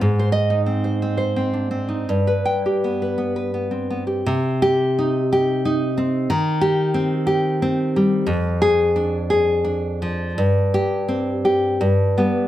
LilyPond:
\new Staff \with { instrumentName = "Nylon-string guitar" } { \time 3/4 \key c \minor \tempo 4 = 86 << { r8 ees''8 r2 | r8 g''8 r2 | r8 g'4 r4. | r8 g'4 r4. |
r8 aes'4 r4. | r8 g'4 r4 b8 | } \\ { aes,16 c''8 ees'16 c'16 c''16 c'16 c''16 c'16 d'16 c'16 ees'16 | g,16 b'8 g'16 b16 b'16 b16 b'16 b16 c'16 b16 g'16 | c4 ees'8 g'8 ees'8 c'8 | ees4 c'8 g'8 c'8 g8 |
f,4 d'8 aes'8 d'8 f8 | g,4 c'8 g'8 g,8 g8 | } >> }